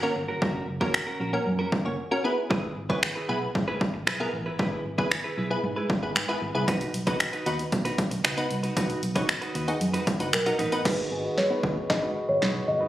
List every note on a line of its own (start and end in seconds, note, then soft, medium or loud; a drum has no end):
0.02 0.44 A#3 loud
0.02 0.44 C#4 medium
0.02 0.45 F#4 medium
0.02 0.45 A#4 loud
0.02 muted clean electric guitar stroke soft
0.16 0.33 G1 medium
0.16 muted clean electric guitar stroke soft
0.28 0.40 C#4 soft
0.28 0.40 F#4 medium
0.28 0.40 A#4 medium
0.41 0.59 F#1 loud
0.41 0.66 C#4 medium
0.41 0.66 F#4 medium
0.41 0.66 A#4 loud
0.41 kick loud
0.68 0.85 F#1 medium
0.68 muted clean electric guitar stroke soft
0.81 1.09 A#3 medium
0.81 1.09 C#4 medium
0.81 0.93 C#4 medium
0.81 1.09 F#4 medium
0.81 0.93 F#4 medium
0.81 0.92 A#4 medium
0.81 1.09 A#4 loud
0.81 kick medium
0.94 finger snap loud
0.94 muted clean electric guitar stroke soft
1.07 1.19 C#4 soft
1.07 1.19 F#4 medium
1.07 1.18 A#4 medium
1.20 1.37 A#1 medium
1.20 1.34 C#4 medium
1.20 1.33 F#4 medium
1.20 1.32 A#4 medium
1.33 1.61 A#3 medium
1.33 1.61 C#4 medium
1.33 1.61 F#4 medium
1.33 1.61 A#4 medium
1.33 muted clean electric guitar stroke soft
1.46 1.63 F#2 medium
1.46 muted clean electric guitar stroke soft
1.59 1.71 C#4 medium
1.59 1.71 F#4 medium
1.59 1.72 A#4 medium
1.72 muted clean electric guitar stroke soft
1.72 kick medium
1.85 1.94 F#1 medium
1.85 1.99 A#3 medium
1.85 1.99 C#4 medium
1.85 1.99 F#4 medium
1.85 1.99 C#5 medium
1.85 muted clean electric guitar stroke soft
2.11 2.24 A#3 medium
2.11 2.24 C#4 medium
2.11 2.25 F#4 medium
2.11 2.25 A#4 loud
2.24 2.77 B3 medium
2.24 2.77 E4 medium
2.24 2.77 G#4 medium
2.24 2.77 B4 loud
2.50 2.67 G#1 loud
2.50 2.74 E4 medium
2.50 2.75 G#4 medium
2.50 2.75 B4 medium
2.50 kick loud
2.76 2.93 G#1 medium
2.76 muted clean electric guitar stroke soft
2.89 3.11 B3 loud
2.89 3.11 E4 medium
2.89 3.01 E4 soft
2.89 3.11 G#4 medium
2.89 3.01 G#4 medium
2.89 3.01 B4 medium
2.89 3.11 C#5 loud
2.89 kick medium
3.03 finger snap loud
3.03 muted clean electric guitar stroke soft
3.16 3.27 E4 medium
3.16 3.27 G#4 medium
3.16 3.27 B4 medium
3.29 3.46 B1 medium
3.29 3.77 B3 medium
3.29 3.43 E4 medium
3.29 3.78 E4 medium
3.29 3.78 G#4 medium
3.29 3.42 G#4 medium
3.29 3.78 B4 loud
3.29 3.41 B4 medium
3.42 muted clean electric guitar stroke soft
3.55 3.72 G#2 loud
3.55 muted clean electric guitar stroke soft
3.55 kick medium
3.68 3.80 E4 medium
3.68 3.80 G#4 medium
3.68 3.81 B4 medium
3.81 muted clean electric guitar stroke soft
3.81 kick medium
3.94 4.07 G#1 medium
3.94 muted clean electric guitar stroke soft
4.07 4.24 B1 medium
4.07 4.21 E4 medium
4.07 4.20 G#4 medium
4.07 4.19 B4 medium
4.07 finger snap loud
4.20 4.62 B3 loud
4.20 4.62 E4 medium
4.20 4.62 G#4 medium
4.20 4.62 A#4 loud
4.20 muted clean electric guitar stroke soft
4.33 4.50 A1 medium
4.33 muted clean electric guitar stroke soft
4.46 4.58 E4 soft
4.46 4.58 G#4 medium
4.46 4.57 B4 medium
4.59 4.76 G#1 medium
4.59 4.83 E4 medium
4.59 4.84 G#4 medium
4.59 4.84 B4 medium
4.59 kick loud
4.85 5.02 G#1 medium
4.85 muted clean electric guitar stroke soft
4.98 5.26 B3 loud
4.98 5.26 E4 medium
4.98 5.10 E4 medium
4.98 5.26 G#4 medium
4.98 5.10 G#4 medium
4.98 5.10 B4 medium
4.98 5.26 B4 loud
4.98 kick medium
5.11 finger snap loud
5.11 muted clean electric guitar stroke soft
5.24 5.36 E4 medium
5.24 5.36 G#4 medium
5.24 5.36 B4 medium
5.37 5.54 B1 medium
5.37 5.52 E4 medium
5.37 5.50 G#4 medium
5.37 5.49 B4 medium
5.50 5.78 B3 medium
5.50 5.78 E4 medium
5.50 5.78 G#4 medium
5.50 5.79 B4 medium
5.50 muted clean electric guitar stroke soft
5.63 5.80 G#2 loud
5.63 muted clean electric guitar stroke soft
5.76 5.88 E4 medium
5.76 5.89 G#4 medium
5.76 5.89 B4 medium
5.90 muted clean electric guitar stroke soft
5.90 kick medium
6.02 6.11 G#1 medium
6.02 6.17 B3 medium
6.02 6.17 E4 medium
6.02 6.17 G#4 medium
6.02 6.17 B4 medium
6.02 muted clean electric guitar stroke soft
6.16 6.24 G#2 loud
6.16 finger snap loud
6.16 muted clean electric guitar stroke soft
6.28 6.43 B3 medium
6.28 6.43 E4 medium
6.28 6.40 E4 medium
6.28 6.43 G#4 medium
6.28 6.41 G#4 medium
6.28 6.41 B4 medium
6.28 6.43 B4 loud
6.42 6.50 G#1 loud
6.42 muted clean electric guitar stroke soft
6.55 6.63 C2 medium
6.55 6.68 B3 medium
6.55 6.68 E4 medium
6.55 6.68 G#4 medium
6.55 6.68 B4 loud
6.55 muted clean electric guitar stroke medium
6.68 6.92 D#4 medium
6.68 6.92 F#4 medium
6.68 6.93 B4 medium
6.68 kick loud
6.68 closed hi-hat medium
6.81 closed hi-hat soft
6.94 7.11 B1 medium
6.94 muted clean electric guitar stroke soft
6.94 closed hi-hat medium
7.07 7.28 B3 loud
7.07 7.28 D#4 medium
7.07 7.19 D#4 medium
7.07 7.28 F#4 medium
7.07 7.19 F#4 medium
7.07 7.18 B4 medium
7.07 7.28 B4 loud
7.07 kick medium
7.07 closed hi-hat medium
7.20 finger snap loud
7.20 muted clean electric guitar stroke soft
7.20 closed hi-hat medium
7.33 7.45 D#4 medium
7.33 7.45 F#4 medium
7.33 7.44 B4 medium
7.33 closed hi-hat soft
7.46 7.63 D#2 medium
7.46 7.95 B3 medium
7.46 7.61 D#4 medium
7.46 7.95 D#4 medium
7.46 7.95 F#4 medium
7.46 7.59 F#4 medium
7.46 7.95 B4 loud
7.46 7.58 B4 medium
7.46 closed hi-hat medium
7.59 muted clean electric guitar stroke soft
7.59 closed hi-hat medium
7.72 7.89 B2 loud
7.72 muted clean electric guitar stroke soft
7.72 kick medium
7.72 closed hi-hat medium
7.85 7.97 D#4 medium
7.85 7.98 F#4 medium
7.85 7.98 B4 medium
7.85 closed hi-hat medium
7.98 muted clean electric guitar stroke soft
7.98 kick medium
7.98 closed hi-hat medium
8.11 8.20 B1 medium
8.11 muted clean electric guitar stroke medium
8.11 closed hi-hat medium
8.24 8.41 C#2 loud
8.24 8.39 D#4 medium
8.24 8.37 F#4 medium
8.24 8.36 B4 medium
8.24 finger snap loud
8.24 closed hi-hat medium
8.37 8.79 B3 loud
8.37 8.79 D#4 medium
8.37 8.79 F#4 medium
8.37 8.79 B4 loud
8.37 muted clean electric guitar stroke soft
8.37 closed hi-hat medium
8.50 8.67 C2 medium
8.50 muted clean electric guitar stroke soft
8.50 closed hi-hat medium
8.63 8.75 D#4 soft
8.63 8.75 F#4 medium
8.63 8.75 B4 medium
8.63 closed hi-hat medium
8.76 8.93 B1 loud
8.76 9.00 D#4 medium
8.76 9.01 F#4 medium
8.76 9.01 B4 loud
8.76 kick loud
8.76 closed hi-hat medium
8.90 closed hi-hat soft
9.03 9.19 B1 medium
9.03 closed hi-hat medium
9.15 9.43 B3 loud
9.15 9.44 D#4 medium
9.15 9.27 D#4 medium
9.15 9.44 F#4 medium
9.15 9.27 F#4 medium
9.15 9.27 B4 medium
9.15 9.44 C#5 loud
9.15 kick medium
9.15 closed hi-hat medium
9.29 finger snap loud
9.29 muted clean electric guitar stroke soft
9.29 closed hi-hat medium
9.41 9.53 D#4 soft
9.41 9.53 F#4 medium
9.41 9.53 B4 medium
9.41 closed hi-hat soft
9.54 9.72 D#2 medium
9.54 9.69 D#4 medium
9.54 9.67 F#4 medium
9.54 9.66 B4 medium
9.54 closed hi-hat medium
9.68 9.96 B3 medium
9.68 9.96 D#4 medium
9.68 9.96 F#4 medium
9.68 9.96 G#4 medium
9.68 muted clean electric guitar stroke soft
9.68 closed hi-hat medium
9.81 9.98 F#2 medium
9.81 muted clean electric guitar stroke soft
9.81 closed hi-hat medium
9.94 10.05 D#4 medium
9.94 10.06 F#4 medium
9.94 10.07 B4 medium
9.94 closed hi-hat medium
10.07 muted clean electric guitar stroke soft
10.07 kick medium
10.07 closed hi-hat medium
10.20 10.29 F#1 medium
10.20 10.34 B3 medium
10.20 10.34 D#4 medium
10.20 10.34 F#4 medium
10.20 10.34 B4 medium
10.20 muted clean electric guitar stroke soft
10.20 closed hi-hat medium
10.33 10.50 B1 medium
10.33 10.82 A#4 medium
10.33 finger snap loud
10.33 closed hi-hat medium
10.46 10.60 B3 medium
10.46 10.60 D#4 medium
10.46 10.60 F#4 medium
10.46 10.60 A#4 loud
10.46 muted clean electric guitar stroke soft
10.46 closed hi-hat medium
10.59 10.68 A1 medium
10.59 10.74 D#4 medium
10.59 10.72 F#4 medium
10.59 10.71 B4 medium
10.59 closed hi-hat medium
10.72 10.84 B3 medium
10.72 10.84 D#4 medium
10.72 10.84 F#4 medium
10.72 10.85 B4 loud
10.72 muted clean electric guitar stroke soft
10.72 closed hi-hat medium
10.85 11.02 G#1 loud
10.85 12.88 G#3 medium
10.85 10.99 B3 medium
10.85 11.09 D#4 medium
10.85 10.99 D#4 medium
10.85 10.99 F#4 medium
10.85 12.88 F#4 medium
10.85 11.10 F#4 medium
10.85 10.99 G#4 medium
10.85 11.39 B4 medium
10.85 12.88 B4 medium
10.85 11.10 B4 medium
10.85 kick loud
10.85 snare medium
10.85 crash medium
11.11 11.28 G#1 loud
11.11 11.32 B3 medium
11.11 11.32 D#4 medium
11.11 11.32 F#4 medium
11.11 11.32 G#4 medium
11.24 11.36 D#4 medium
11.24 11.36 F#4 medium
11.24 11.36 B4 medium
11.37 11.91 C#5 medium
11.37 muted clean electric guitar stroke soft
11.37 snare medium
11.50 11.71 B3 medium
11.50 11.71 D#4 medium
11.50 11.62 D#4 medium
11.50 11.71 F#4 medium
11.50 11.62 F#4 medium
11.50 11.62 B4 medium
11.50 11.72 B4 medium
11.63 11.80 D#2 medium
11.63 11.78 D#4 medium
11.63 11.76 F#4 medium
11.63 11.75 B4 medium
11.63 kick medium
11.76 muted clean electric guitar stroke soft
11.89 12.06 G#2 loud
11.89 12.45 B3 medium
11.89 12.45 D#4 medium
11.89 12.45 F#4 medium
11.89 12.45 G#4 medium
11.89 12.30 D#5 loud
11.89 muted clean electric guitar stroke soft
11.89 kick medium
11.89 snare medium
12.02 12.14 D#4 medium
12.02 12.15 F#4 medium
12.02 12.15 B4 medium
12.16 muted clean electric guitar stroke soft
12.29 12.37 G#1 medium
12.29 12.65 C#5 loud
12.29 muted clean electric guitar stroke medium
12.42 12.59 B1 medium
12.42 12.56 D#4 medium
12.42 12.55 F#4 medium
12.42 12.54 B4 medium
12.42 snare medium
12.55 muted clean electric guitar stroke soft
12.68 12.85 G1 medium
12.68 12.88 D#5 loud
12.68 muted clean electric guitar stroke soft
12.81 12.88 D#4 soft
12.81 12.88 F#4 medium
12.81 12.88 B4 medium